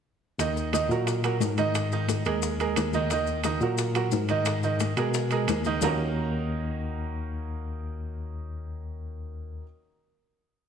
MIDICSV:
0, 0, Header, 1, 4, 480
1, 0, Start_track
1, 0, Key_signature, -6, "minor"
1, 0, Tempo, 339943
1, 549, Time_signature, 4, 2, 24, 8
1, 15089, End_track
2, 0, Start_track
2, 0, Title_t, "Grand piano"
2, 0, Program_c, 0, 0
2, 557, Note_on_c, 0, 51, 72
2, 563, Note_on_c, 0, 63, 73
2, 568, Note_on_c, 0, 75, 77
2, 948, Note_off_c, 0, 51, 0
2, 951, Note_off_c, 0, 63, 0
2, 954, Note_off_c, 0, 75, 0
2, 1037, Note_on_c, 0, 51, 72
2, 1040, Note_on_c, 0, 63, 71
2, 1048, Note_on_c, 0, 75, 77
2, 1231, Note_off_c, 0, 51, 0
2, 1233, Note_off_c, 0, 63, 0
2, 1237, Note_off_c, 0, 75, 0
2, 1284, Note_on_c, 0, 54, 75
2, 1287, Note_on_c, 0, 66, 74
2, 1290, Note_on_c, 0, 70, 74
2, 1672, Note_off_c, 0, 54, 0
2, 1674, Note_off_c, 0, 66, 0
2, 1675, Note_off_c, 0, 70, 0
2, 1755, Note_on_c, 0, 54, 74
2, 1760, Note_on_c, 0, 66, 67
2, 1762, Note_on_c, 0, 70, 70
2, 2147, Note_off_c, 0, 54, 0
2, 2149, Note_off_c, 0, 66, 0
2, 2151, Note_off_c, 0, 70, 0
2, 2228, Note_on_c, 0, 51, 77
2, 2236, Note_on_c, 0, 63, 87
2, 2240, Note_on_c, 0, 75, 89
2, 2622, Note_off_c, 0, 51, 0
2, 2627, Note_off_c, 0, 63, 0
2, 2630, Note_off_c, 0, 75, 0
2, 2719, Note_on_c, 0, 51, 65
2, 2727, Note_on_c, 0, 63, 79
2, 2727, Note_on_c, 0, 75, 71
2, 3109, Note_off_c, 0, 51, 0
2, 3113, Note_off_c, 0, 63, 0
2, 3113, Note_off_c, 0, 75, 0
2, 3191, Note_on_c, 0, 68, 78
2, 3193, Note_on_c, 0, 56, 77
2, 3195, Note_on_c, 0, 70, 70
2, 3584, Note_off_c, 0, 68, 0
2, 3585, Note_off_c, 0, 56, 0
2, 3586, Note_off_c, 0, 70, 0
2, 3672, Note_on_c, 0, 56, 75
2, 3675, Note_on_c, 0, 68, 74
2, 3682, Note_on_c, 0, 70, 76
2, 4064, Note_off_c, 0, 56, 0
2, 4066, Note_off_c, 0, 68, 0
2, 4070, Note_off_c, 0, 70, 0
2, 4157, Note_on_c, 0, 63, 81
2, 4158, Note_on_c, 0, 51, 88
2, 4162, Note_on_c, 0, 75, 86
2, 4350, Note_off_c, 0, 63, 0
2, 4351, Note_off_c, 0, 51, 0
2, 4353, Note_off_c, 0, 75, 0
2, 4400, Note_on_c, 0, 51, 77
2, 4401, Note_on_c, 0, 63, 81
2, 4408, Note_on_c, 0, 75, 84
2, 4788, Note_off_c, 0, 51, 0
2, 4789, Note_off_c, 0, 63, 0
2, 4793, Note_off_c, 0, 75, 0
2, 4875, Note_on_c, 0, 51, 77
2, 4875, Note_on_c, 0, 63, 86
2, 4880, Note_on_c, 0, 75, 80
2, 5068, Note_off_c, 0, 51, 0
2, 5069, Note_off_c, 0, 63, 0
2, 5072, Note_off_c, 0, 75, 0
2, 5113, Note_on_c, 0, 54, 67
2, 5119, Note_on_c, 0, 66, 80
2, 5124, Note_on_c, 0, 70, 73
2, 5504, Note_off_c, 0, 54, 0
2, 5507, Note_off_c, 0, 66, 0
2, 5510, Note_off_c, 0, 70, 0
2, 5587, Note_on_c, 0, 54, 76
2, 5589, Note_on_c, 0, 66, 85
2, 5598, Note_on_c, 0, 70, 78
2, 5980, Note_off_c, 0, 54, 0
2, 5981, Note_off_c, 0, 66, 0
2, 5986, Note_off_c, 0, 70, 0
2, 6067, Note_on_c, 0, 63, 79
2, 6070, Note_on_c, 0, 51, 80
2, 6078, Note_on_c, 0, 75, 88
2, 6460, Note_off_c, 0, 63, 0
2, 6461, Note_off_c, 0, 51, 0
2, 6466, Note_off_c, 0, 75, 0
2, 6546, Note_on_c, 0, 51, 78
2, 6549, Note_on_c, 0, 63, 67
2, 6556, Note_on_c, 0, 75, 74
2, 6939, Note_off_c, 0, 51, 0
2, 6941, Note_off_c, 0, 63, 0
2, 6945, Note_off_c, 0, 75, 0
2, 7025, Note_on_c, 0, 56, 65
2, 7032, Note_on_c, 0, 68, 75
2, 7038, Note_on_c, 0, 70, 77
2, 7418, Note_off_c, 0, 56, 0
2, 7422, Note_off_c, 0, 68, 0
2, 7426, Note_off_c, 0, 70, 0
2, 7507, Note_on_c, 0, 56, 76
2, 7514, Note_on_c, 0, 68, 75
2, 7517, Note_on_c, 0, 70, 82
2, 7899, Note_off_c, 0, 56, 0
2, 7903, Note_off_c, 0, 68, 0
2, 7905, Note_off_c, 0, 70, 0
2, 7991, Note_on_c, 0, 51, 93
2, 8000, Note_on_c, 0, 63, 82
2, 8003, Note_on_c, 0, 75, 84
2, 8185, Note_off_c, 0, 51, 0
2, 8190, Note_off_c, 0, 63, 0
2, 8191, Note_off_c, 0, 75, 0
2, 8231, Note_on_c, 0, 51, 86
2, 8236, Note_on_c, 0, 58, 84
2, 8237, Note_on_c, 0, 61, 79
2, 8241, Note_on_c, 0, 63, 79
2, 8248, Note_on_c, 0, 66, 80
2, 8248, Note_on_c, 0, 70, 102
2, 13592, Note_off_c, 0, 51, 0
2, 13598, Note_off_c, 0, 58, 0
2, 13599, Note_off_c, 0, 61, 0
2, 13603, Note_off_c, 0, 63, 0
2, 13610, Note_off_c, 0, 66, 0
2, 13610, Note_off_c, 0, 70, 0
2, 15089, End_track
3, 0, Start_track
3, 0, Title_t, "Tine electric piano"
3, 0, Program_c, 1, 4
3, 544, Note_on_c, 1, 39, 85
3, 1217, Note_off_c, 1, 39, 0
3, 1256, Note_on_c, 1, 46, 92
3, 1932, Note_off_c, 1, 46, 0
3, 1979, Note_on_c, 1, 44, 77
3, 3104, Note_off_c, 1, 44, 0
3, 3183, Note_on_c, 1, 39, 85
3, 3855, Note_off_c, 1, 39, 0
3, 3893, Note_on_c, 1, 39, 78
3, 5019, Note_off_c, 1, 39, 0
3, 5092, Note_on_c, 1, 46, 97
3, 5768, Note_off_c, 1, 46, 0
3, 5814, Note_on_c, 1, 44, 82
3, 6938, Note_off_c, 1, 44, 0
3, 7018, Note_on_c, 1, 47, 91
3, 7690, Note_off_c, 1, 47, 0
3, 7730, Note_on_c, 1, 39, 91
3, 8160, Note_off_c, 1, 39, 0
3, 8209, Note_on_c, 1, 39, 92
3, 13571, Note_off_c, 1, 39, 0
3, 15089, End_track
4, 0, Start_track
4, 0, Title_t, "Drums"
4, 550, Note_on_c, 9, 63, 31
4, 554, Note_on_c, 9, 60, 61
4, 557, Note_on_c, 9, 70, 67
4, 558, Note_on_c, 9, 65, 62
4, 691, Note_off_c, 9, 63, 0
4, 696, Note_off_c, 9, 60, 0
4, 698, Note_off_c, 9, 70, 0
4, 699, Note_off_c, 9, 65, 0
4, 794, Note_on_c, 9, 60, 32
4, 797, Note_on_c, 9, 63, 38
4, 803, Note_on_c, 9, 70, 30
4, 935, Note_off_c, 9, 60, 0
4, 938, Note_off_c, 9, 63, 0
4, 944, Note_off_c, 9, 70, 0
4, 1032, Note_on_c, 9, 65, 79
4, 1037, Note_on_c, 9, 60, 54
4, 1039, Note_on_c, 9, 63, 86
4, 1055, Note_on_c, 9, 70, 71
4, 1173, Note_off_c, 9, 65, 0
4, 1178, Note_off_c, 9, 60, 0
4, 1180, Note_off_c, 9, 63, 0
4, 1196, Note_off_c, 9, 70, 0
4, 1286, Note_on_c, 9, 70, 28
4, 1427, Note_off_c, 9, 70, 0
4, 1510, Note_on_c, 9, 65, 74
4, 1514, Note_on_c, 9, 60, 59
4, 1518, Note_on_c, 9, 70, 67
4, 1652, Note_off_c, 9, 65, 0
4, 1655, Note_off_c, 9, 60, 0
4, 1660, Note_off_c, 9, 70, 0
4, 1749, Note_on_c, 9, 70, 28
4, 1750, Note_on_c, 9, 63, 33
4, 1751, Note_on_c, 9, 65, 94
4, 1760, Note_on_c, 9, 60, 30
4, 1891, Note_off_c, 9, 70, 0
4, 1892, Note_off_c, 9, 63, 0
4, 1892, Note_off_c, 9, 65, 0
4, 1901, Note_off_c, 9, 60, 0
4, 1982, Note_on_c, 9, 63, 85
4, 1993, Note_on_c, 9, 66, 78
4, 1995, Note_on_c, 9, 70, 70
4, 1997, Note_on_c, 9, 60, 33
4, 1997, Note_on_c, 9, 61, 73
4, 2123, Note_off_c, 9, 63, 0
4, 2134, Note_off_c, 9, 66, 0
4, 2136, Note_off_c, 9, 70, 0
4, 2138, Note_off_c, 9, 60, 0
4, 2138, Note_off_c, 9, 61, 0
4, 2227, Note_on_c, 9, 70, 30
4, 2229, Note_on_c, 9, 65, 69
4, 2231, Note_on_c, 9, 60, 33
4, 2233, Note_on_c, 9, 63, 77
4, 2368, Note_off_c, 9, 70, 0
4, 2371, Note_off_c, 9, 65, 0
4, 2372, Note_off_c, 9, 60, 0
4, 2374, Note_off_c, 9, 63, 0
4, 2469, Note_on_c, 9, 63, 35
4, 2469, Note_on_c, 9, 70, 65
4, 2473, Note_on_c, 9, 65, 88
4, 2477, Note_on_c, 9, 60, 62
4, 2610, Note_off_c, 9, 63, 0
4, 2610, Note_off_c, 9, 70, 0
4, 2615, Note_off_c, 9, 65, 0
4, 2618, Note_off_c, 9, 60, 0
4, 2711, Note_on_c, 9, 70, 32
4, 2717, Note_on_c, 9, 63, 37
4, 2724, Note_on_c, 9, 60, 30
4, 2852, Note_off_c, 9, 70, 0
4, 2859, Note_off_c, 9, 63, 0
4, 2866, Note_off_c, 9, 60, 0
4, 2944, Note_on_c, 9, 63, 91
4, 2945, Note_on_c, 9, 65, 63
4, 2952, Note_on_c, 9, 70, 70
4, 2959, Note_on_c, 9, 60, 49
4, 3085, Note_off_c, 9, 63, 0
4, 3086, Note_off_c, 9, 65, 0
4, 3093, Note_off_c, 9, 70, 0
4, 3100, Note_off_c, 9, 60, 0
4, 3181, Note_on_c, 9, 70, 28
4, 3198, Note_on_c, 9, 65, 91
4, 3322, Note_off_c, 9, 70, 0
4, 3339, Note_off_c, 9, 65, 0
4, 3422, Note_on_c, 9, 70, 73
4, 3430, Note_on_c, 9, 60, 61
4, 3563, Note_off_c, 9, 70, 0
4, 3571, Note_off_c, 9, 60, 0
4, 3671, Note_on_c, 9, 63, 35
4, 3672, Note_on_c, 9, 70, 28
4, 3673, Note_on_c, 9, 65, 65
4, 3678, Note_on_c, 9, 60, 36
4, 3812, Note_off_c, 9, 63, 0
4, 3813, Note_off_c, 9, 70, 0
4, 3814, Note_off_c, 9, 65, 0
4, 3819, Note_off_c, 9, 60, 0
4, 3902, Note_on_c, 9, 65, 104
4, 3905, Note_on_c, 9, 63, 88
4, 3911, Note_on_c, 9, 70, 69
4, 3919, Note_on_c, 9, 60, 33
4, 3919, Note_on_c, 9, 61, 90
4, 4044, Note_off_c, 9, 65, 0
4, 4046, Note_off_c, 9, 63, 0
4, 4052, Note_off_c, 9, 70, 0
4, 4060, Note_off_c, 9, 60, 0
4, 4060, Note_off_c, 9, 61, 0
4, 4143, Note_on_c, 9, 70, 30
4, 4145, Note_on_c, 9, 63, 86
4, 4153, Note_on_c, 9, 60, 33
4, 4285, Note_off_c, 9, 70, 0
4, 4286, Note_off_c, 9, 63, 0
4, 4294, Note_off_c, 9, 60, 0
4, 4383, Note_on_c, 9, 65, 66
4, 4385, Note_on_c, 9, 70, 66
4, 4388, Note_on_c, 9, 60, 59
4, 4524, Note_off_c, 9, 65, 0
4, 4526, Note_off_c, 9, 70, 0
4, 4530, Note_off_c, 9, 60, 0
4, 4618, Note_on_c, 9, 70, 33
4, 4630, Note_on_c, 9, 60, 34
4, 4631, Note_on_c, 9, 63, 37
4, 4760, Note_off_c, 9, 70, 0
4, 4771, Note_off_c, 9, 60, 0
4, 4772, Note_off_c, 9, 63, 0
4, 4851, Note_on_c, 9, 65, 86
4, 4855, Note_on_c, 9, 70, 64
4, 4862, Note_on_c, 9, 60, 55
4, 4862, Note_on_c, 9, 63, 89
4, 4993, Note_off_c, 9, 65, 0
4, 4996, Note_off_c, 9, 70, 0
4, 5003, Note_off_c, 9, 60, 0
4, 5004, Note_off_c, 9, 63, 0
4, 5098, Note_on_c, 9, 63, 37
4, 5098, Note_on_c, 9, 70, 27
4, 5239, Note_off_c, 9, 63, 0
4, 5239, Note_off_c, 9, 70, 0
4, 5335, Note_on_c, 9, 70, 69
4, 5336, Note_on_c, 9, 63, 35
4, 5344, Note_on_c, 9, 65, 67
4, 5347, Note_on_c, 9, 60, 63
4, 5476, Note_off_c, 9, 70, 0
4, 5478, Note_off_c, 9, 63, 0
4, 5486, Note_off_c, 9, 65, 0
4, 5488, Note_off_c, 9, 60, 0
4, 5579, Note_on_c, 9, 65, 93
4, 5582, Note_on_c, 9, 70, 29
4, 5587, Note_on_c, 9, 63, 33
4, 5593, Note_on_c, 9, 60, 35
4, 5720, Note_off_c, 9, 65, 0
4, 5723, Note_off_c, 9, 70, 0
4, 5729, Note_off_c, 9, 63, 0
4, 5734, Note_off_c, 9, 60, 0
4, 5810, Note_on_c, 9, 70, 66
4, 5822, Note_on_c, 9, 63, 90
4, 5830, Note_on_c, 9, 60, 35
4, 5830, Note_on_c, 9, 61, 78
4, 5951, Note_off_c, 9, 70, 0
4, 5963, Note_off_c, 9, 63, 0
4, 5971, Note_off_c, 9, 60, 0
4, 5971, Note_off_c, 9, 61, 0
4, 6051, Note_on_c, 9, 70, 28
4, 6054, Note_on_c, 9, 65, 68
4, 6059, Note_on_c, 9, 63, 84
4, 6072, Note_on_c, 9, 60, 34
4, 6193, Note_off_c, 9, 70, 0
4, 6195, Note_off_c, 9, 65, 0
4, 6201, Note_off_c, 9, 63, 0
4, 6213, Note_off_c, 9, 60, 0
4, 6288, Note_on_c, 9, 70, 71
4, 6296, Note_on_c, 9, 65, 97
4, 6310, Note_on_c, 9, 63, 35
4, 6312, Note_on_c, 9, 60, 68
4, 6430, Note_off_c, 9, 70, 0
4, 6437, Note_off_c, 9, 65, 0
4, 6452, Note_off_c, 9, 63, 0
4, 6454, Note_off_c, 9, 60, 0
4, 6539, Note_on_c, 9, 70, 34
4, 6544, Note_on_c, 9, 60, 34
4, 6547, Note_on_c, 9, 63, 35
4, 6680, Note_off_c, 9, 70, 0
4, 6685, Note_off_c, 9, 60, 0
4, 6689, Note_off_c, 9, 63, 0
4, 6774, Note_on_c, 9, 70, 70
4, 6784, Note_on_c, 9, 65, 70
4, 6788, Note_on_c, 9, 60, 54
4, 6789, Note_on_c, 9, 63, 88
4, 6916, Note_off_c, 9, 70, 0
4, 6925, Note_off_c, 9, 65, 0
4, 6929, Note_off_c, 9, 60, 0
4, 6930, Note_off_c, 9, 63, 0
4, 7018, Note_on_c, 9, 70, 29
4, 7019, Note_on_c, 9, 65, 87
4, 7021, Note_on_c, 9, 63, 38
4, 7159, Note_off_c, 9, 70, 0
4, 7160, Note_off_c, 9, 65, 0
4, 7162, Note_off_c, 9, 63, 0
4, 7257, Note_on_c, 9, 70, 75
4, 7261, Note_on_c, 9, 63, 39
4, 7269, Note_on_c, 9, 60, 65
4, 7399, Note_off_c, 9, 70, 0
4, 7403, Note_off_c, 9, 63, 0
4, 7410, Note_off_c, 9, 60, 0
4, 7494, Note_on_c, 9, 65, 71
4, 7494, Note_on_c, 9, 70, 30
4, 7507, Note_on_c, 9, 63, 32
4, 7518, Note_on_c, 9, 60, 34
4, 7635, Note_off_c, 9, 65, 0
4, 7635, Note_off_c, 9, 70, 0
4, 7648, Note_off_c, 9, 63, 0
4, 7660, Note_off_c, 9, 60, 0
4, 7737, Note_on_c, 9, 65, 95
4, 7743, Note_on_c, 9, 70, 62
4, 7747, Note_on_c, 9, 63, 88
4, 7763, Note_on_c, 9, 60, 33
4, 7763, Note_on_c, 9, 61, 86
4, 7878, Note_off_c, 9, 65, 0
4, 7884, Note_off_c, 9, 70, 0
4, 7888, Note_off_c, 9, 63, 0
4, 7904, Note_off_c, 9, 60, 0
4, 7904, Note_off_c, 9, 61, 0
4, 7969, Note_on_c, 9, 70, 30
4, 7976, Note_on_c, 9, 63, 82
4, 7995, Note_on_c, 9, 60, 35
4, 8110, Note_off_c, 9, 70, 0
4, 8117, Note_off_c, 9, 63, 0
4, 8136, Note_off_c, 9, 60, 0
4, 8210, Note_on_c, 9, 70, 99
4, 8223, Note_on_c, 9, 64, 104
4, 8224, Note_on_c, 9, 66, 104
4, 8232, Note_on_c, 9, 61, 89
4, 8351, Note_off_c, 9, 70, 0
4, 8364, Note_off_c, 9, 64, 0
4, 8365, Note_off_c, 9, 66, 0
4, 8373, Note_off_c, 9, 61, 0
4, 15089, End_track
0, 0, End_of_file